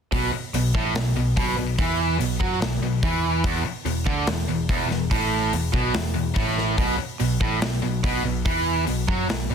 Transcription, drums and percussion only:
0.12 kick, open hi-hat
0.54 open hi-hat
0.75 kick
0.95 snare, open hi-hat
1.37 kick, open hi-hat
1.79 kick, open hi-hat
2.20 open hi-hat
2.41 kick
2.62 snare, open hi-hat
3.03 kick, open hi-hat
3.44 kick, open hi-hat
3.86 open hi-hat
4.07 kick
4.27 snare, open hi-hat
4.69 kick, open hi-hat
4.91 snare
5.11 kick, open hi-hat
5.53 open hi-hat
5.74 kick
5.94 snare, open hi-hat
6.36 kick, open hi-hat
6.58 snare
6.78 kick, open hi-hat
7.20 open hi-hat
7.41 kick
7.62 snare, open hi-hat
8.04 kick, open hi-hat
8.46 kick, open hi-hat
8.87 open hi-hat
9.08 kick
9.29 snare, open hi-hat

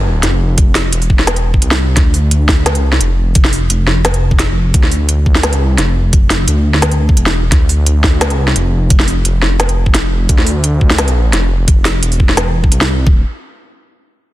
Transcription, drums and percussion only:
0.23 snare, closed hi-hat
0.58 kick, closed hi-hat
0.75 snare, open hi-hat
0.93 closed hi-hat
1.02 open hi-hat
1.10 kick
1.19 snare
1.27 snare, closed hi-hat
1.36 closed hi-hat
1.54 kick
1.62 closed hi-hat
1.71 snare
1.97 kick, snare, closed hi-hat
2.14 open hi-hat
2.31 closed hi-hat
2.49 kick, snare
2.66 snare, closed hi-hat
2.75 closed hi-hat
2.92 snare
3.01 closed hi-hat
3.35 kick, closed hi-hat
3.44 snare
3.53 open hi-hat
3.70 closed hi-hat
3.87 snare
4.05 snare, closed hi-hat
4.14 closed hi-hat
4.31 kick
4.39 snare, closed hi-hat
4.74 kick, closed hi-hat
4.83 snare
4.91 open hi-hat
5.09 closed hi-hat
5.26 kick
5.35 snare
5.43 snare, closed hi-hat
5.53 closed hi-hat
5.78 snare, closed hi-hat
6.13 kick, closed hi-hat
6.30 snare, open hi-hat
6.48 closed hi-hat
6.74 snare
6.82 snare, closed hi-hat
6.91 closed hi-hat
7.09 kick
7.17 closed hi-hat
7.26 snare
7.52 kick, snare, closed hi-hat
7.69 open hi-hat
7.86 closed hi-hat
8.04 kick, snare
8.21 snare, closed hi-hat
8.30 closed hi-hat
8.48 snare
8.56 closed hi-hat
8.90 kick, closed hi-hat
9.00 snare
9.08 open hi-hat
9.25 closed hi-hat
9.42 snare
9.60 snare, closed hi-hat
9.69 closed hi-hat
9.86 kick
9.94 snare, closed hi-hat
10.29 kick, closed hi-hat
10.38 snare
10.46 open hi-hat
10.64 closed hi-hat
10.81 kick
10.90 snare
10.98 snare, closed hi-hat
11.08 closed hi-hat
11.33 snare, closed hi-hat
11.68 kick, closed hi-hat
11.85 snare, open hi-hat
12.03 closed hi-hat
12.12 open hi-hat
12.20 kick
12.29 snare
12.37 snare, closed hi-hat
12.64 kick
12.72 closed hi-hat
12.81 snare
13.07 kick

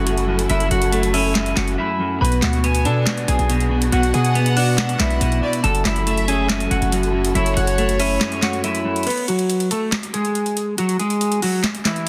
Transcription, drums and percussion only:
0.07 closed hi-hat
0.18 closed hi-hat
0.39 closed hi-hat
0.50 closed hi-hat
0.60 closed hi-hat
0.71 closed hi-hat
0.82 closed hi-hat
0.92 closed hi-hat
1.03 closed hi-hat
1.14 open hi-hat
1.35 snare, clap, closed hi-hat
1.46 closed hi-hat
1.57 snare, clap, closed hi-hat
1.68 closed hi-hat
2.25 closed hi-hat
2.32 closed hi-hat
2.42 snare, clap, closed hi-hat
2.53 closed hi-hat
2.64 closed hi-hat
2.75 closed hi-hat
2.85 closed hi-hat
3.07 snare, clap, closed hi-hat
3.18 closed hi-hat
3.28 closed hi-hat
3.39 closed hi-hat
3.50 closed hi-hat
3.60 closed hi-hat
3.82 closed hi-hat
3.92 closed hi-hat
4.03 closed hi-hat
4.14 closed hi-hat
4.25 closed hi-hat
4.35 closed hi-hat
4.46 closed hi-hat
4.57 open hi-hat
4.78 snare, clap, closed hi-hat
4.89 closed hi-hat
5.00 snare, clap, closed hi-hat
5.10 closed hi-hat
5.21 closed hi-hat
5.32 closed hi-hat
5.53 closed hi-hat
5.64 closed hi-hat
5.75 closed hi-hat
5.85 snare, clap, closed hi-hat
5.96 closed hi-hat
6.07 closed hi-hat
6.17 closed hi-hat
6.28 closed hi-hat
6.49 snare, clap, closed hi-hat
6.60 closed hi-hat
6.71 closed hi-hat
6.82 closed hi-hat
6.92 closed hi-hat
7.03 closed hi-hat
7.25 closed hi-hat
7.35 closed hi-hat
7.46 closed hi-hat
7.57 closed hi-hat
7.67 closed hi-hat
7.78 closed hi-hat
7.89 closed hi-hat
8.00 open hi-hat
8.21 snare, clap, closed hi-hat
8.32 closed hi-hat
8.42 snare, clap, closed hi-hat
8.53 closed hi-hat
8.64 closed hi-hat
8.75 closed hi-hat
8.96 closed hi-hat
9.03 closed hi-hat
9.07 closed hi-hat, crash
9.10 closed hi-hat
9.17 closed hi-hat
9.28 closed hi-hat
9.39 closed hi-hat
9.50 closed hi-hat
9.60 closed hi-hat
9.71 closed hi-hat
9.92 snare, clap, closed hi-hat
10.03 closed hi-hat
10.14 closed hi-hat
10.25 closed hi-hat
10.35 closed hi-hat
10.46 closed hi-hat
10.57 closed hi-hat
10.78 closed hi-hat
10.89 closed hi-hat
11.00 closed hi-hat
11.10 closed hi-hat
11.21 closed hi-hat
11.32 closed hi-hat
11.42 open hi-hat
11.64 snare, clap, closed hi-hat
11.75 closed hi-hat
11.85 snare, clap, closed hi-hat
11.96 closed hi-hat

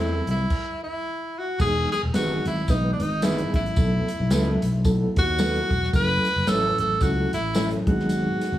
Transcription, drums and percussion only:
0.27 closed hi-hat
0.50 kick, crash
1.60 kick, crash, tambourine
1.92 snare, closed hi-hat
2.14 snare, closed hi-hat, tambourine
2.45 closed hi-hat
2.68 kick, closed hi-hat, tambourine
3.00 closed hi-hat
3.22 snare, closed hi-hat, tambourine
3.38 closed hi-hat
3.54 kick, closed hi-hat
3.66 closed hi-hat
3.76 kick, closed hi-hat, tambourine
4.08 closed hi-hat
4.30 snare, closed hi-hat, tambourine
4.62 closed hi-hat
4.84 kick, closed hi-hat, tambourine
5.16 kick, closed hi-hat
5.38 snare, closed hi-hat, tambourine
5.55 closed hi-hat
5.71 kick, closed hi-hat
5.83 snare
5.93 kick, closed hi-hat, tambourine
6.25 snare, closed hi-hat
6.47 snare, closed hi-hat, tambourine
6.78 closed hi-hat
7.01 kick, closed hi-hat, tambourine
7.33 closed hi-hat
7.55 snare, closed hi-hat, tambourine
7.71 closed hi-hat
7.87 kick, closed hi-hat
8.00 snare
8.09 closed hi-hat, tambourine
8.41 snare, closed hi-hat

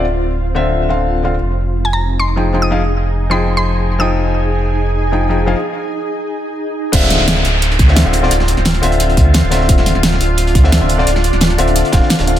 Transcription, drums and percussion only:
6.93 kick, closed hi-hat, crash
7.02 snare
7.10 snare, closed hi-hat
7.20 snare
7.28 snare, closed hi-hat
7.36 snare
7.45 closed hi-hat, open hi-hat
7.62 closed hi-hat
7.71 closed hi-hat
7.79 kick, closed hi-hat
7.88 snare
7.96 snare, closed hi-hat
8.13 closed hi-hat, open hi-hat
8.23 snare
8.31 closed hi-hat
8.40 snare
8.48 closed hi-hat
8.57 snare
8.65 snare, closed hi-hat
8.74 snare, closed hi-hat
8.83 closed hi-hat, open hi-hat
8.92 closed hi-hat
9.00 closed hi-hat
9.10 closed hi-hat
9.17 kick, closed hi-hat
9.34 snare, closed hi-hat
9.51 snare, closed hi-hat, open hi-hat
9.61 snare
9.69 kick, closed hi-hat
9.78 snare
9.86 snare, closed hi-hat
9.95 snare
10.03 snare, closed hi-hat
10.12 snare
10.21 closed hi-hat, open hi-hat
10.38 closed hi-hat
10.47 closed hi-hat
10.55 kick, closed hi-hat
10.64 snare
10.72 snare, closed hi-hat
10.89 closed hi-hat, open hi-hat
10.99 snare
11.07 closed hi-hat
11.16 snare
11.24 closed hi-hat
11.33 snare
11.41 snare, closed hi-hat
11.50 snare, closed hi-hat
11.58 closed hi-hat, open hi-hat
11.67 closed hi-hat
11.76 closed hi-hat
11.85 closed hi-hat
11.93 kick, snare, closed hi-hat
12.03 snare
12.10 snare, closed hi-hat
12.19 snare, closed hi-hat
12.27 snare, open hi-hat

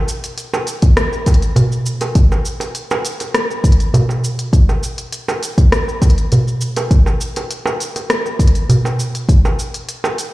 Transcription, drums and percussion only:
0.09 shaker
0.24 closed hi-hat, shaker
0.38 closed hi-hat, shaker
0.54 darbuka tek, shaker
0.67 closed hi-hat, shaker
0.82 kick, closed hi-hat, shaker
0.97 cross-stick, closed hi-hat, shaker
1.12 darbuka ka, shaker
1.26 kick, closed hi-hat, darbuka ka, shaker
1.34 closed hi-hat
1.42 closed hi-hat, shaker
1.56 closed hi-hat, darbuka dum, shaker
1.72 shaker
1.86 shaker
2.01 closed hi-hat, darbuka ka, darbuka tek, shaker
2.15 kick, closed hi-hat, shaker
2.32 darbuka tek, shaker
2.45 shaker
2.60 closed hi-hat, darbuka ka, shaker
2.75 closed hi-hat, shaker
2.91 darbuka tek, shaker
3.05 closed hi-hat, shaker
3.20 closed hi-hat, darbuka ka, shaker
3.34 cross-stick, closed hi-hat, shaker
3.51 darbuka ka, shaker
3.64 kick, closed hi-hat, shaker
3.72 closed hi-hat
3.80 closed hi-hat, shaker
3.94 closed hi-hat, darbuka dum, shaker
4.09 darbuka ka, darbuka tek, shaker
4.24 shaker
4.39 closed hi-hat, shaker
4.53 kick, closed hi-hat, shaker
4.69 darbuka tek, shaker
4.83 shaker
4.98 closed hi-hat, shaker
5.12 closed hi-hat, shaker
5.28 darbuka tek, shaker
5.43 closed hi-hat, shaker
5.58 kick, closed hi-hat, shaker
5.72 cross-stick, closed hi-hat, shaker
5.88 darbuka ka, shaker
6.02 kick, closed hi-hat, darbuka ka, shaker
6.10 closed hi-hat
6.18 closed hi-hat, shaker
6.32 closed hi-hat, darbuka dum, shaker
6.48 shaker
6.61 shaker
6.76 closed hi-hat, darbuka ka, darbuka tek, shaker
6.91 kick, closed hi-hat, shaker
7.06 darbuka tek, shaker
7.21 shaker
7.36 closed hi-hat, darbuka ka, shaker
7.51 closed hi-hat, shaker
7.66 darbuka tek, shaker
7.80 closed hi-hat, shaker
7.96 closed hi-hat, darbuka ka, shaker
8.10 cross-stick, closed hi-hat, shaker
8.26 darbuka ka, shaker
8.39 kick, closed hi-hat, shaker
8.47 closed hi-hat
8.55 closed hi-hat, shaker
8.69 closed hi-hat, darbuka dum, shaker
8.85 darbuka ka, darbuka tek, shaker
9.00 shaker
9.15 closed hi-hat, shaker
9.29 kick, closed hi-hat, shaker
9.45 darbuka tek, shaker
9.59 shaker
9.74 closed hi-hat, shaker
9.89 closed hi-hat, shaker
10.04 darbuka tek, shaker
10.18 closed hi-hat, shaker

